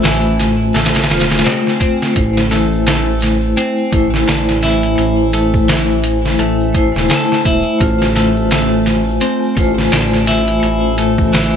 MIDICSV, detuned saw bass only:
0, 0, Header, 1, 2, 480
1, 0, Start_track
1, 0, Key_signature, 0, "minor"
1, 0, Tempo, 705882
1, 1467, Time_signature, 4, 2, 24, 8
1, 7864, End_track
2, 0, Start_track
2, 0, Title_t, "Detuned saw bass"
2, 0, Program_c, 0, 39
2, 0, Note_on_c, 0, 33, 96
2, 488, Note_off_c, 0, 33, 0
2, 509, Note_on_c, 0, 33, 72
2, 750, Note_on_c, 0, 28, 91
2, 760, Note_off_c, 0, 33, 0
2, 870, Note_off_c, 0, 28, 0
2, 888, Note_on_c, 0, 28, 77
2, 976, Note_off_c, 0, 28, 0
2, 1472, Note_on_c, 0, 33, 97
2, 2410, Note_off_c, 0, 33, 0
2, 2670, Note_on_c, 0, 33, 93
2, 2884, Note_off_c, 0, 33, 0
2, 2914, Note_on_c, 0, 33, 80
2, 3371, Note_off_c, 0, 33, 0
2, 3392, Note_on_c, 0, 33, 92
2, 4330, Note_off_c, 0, 33, 0
2, 4351, Note_on_c, 0, 33, 73
2, 4701, Note_off_c, 0, 33, 0
2, 4731, Note_on_c, 0, 28, 92
2, 4817, Note_off_c, 0, 28, 0
2, 5070, Note_on_c, 0, 28, 95
2, 5190, Note_off_c, 0, 28, 0
2, 5309, Note_on_c, 0, 33, 98
2, 6248, Note_off_c, 0, 33, 0
2, 6506, Note_on_c, 0, 33, 90
2, 6722, Note_off_c, 0, 33, 0
2, 6748, Note_on_c, 0, 33, 82
2, 7208, Note_off_c, 0, 33, 0
2, 7227, Note_on_c, 0, 33, 99
2, 7864, Note_off_c, 0, 33, 0
2, 7864, End_track
0, 0, End_of_file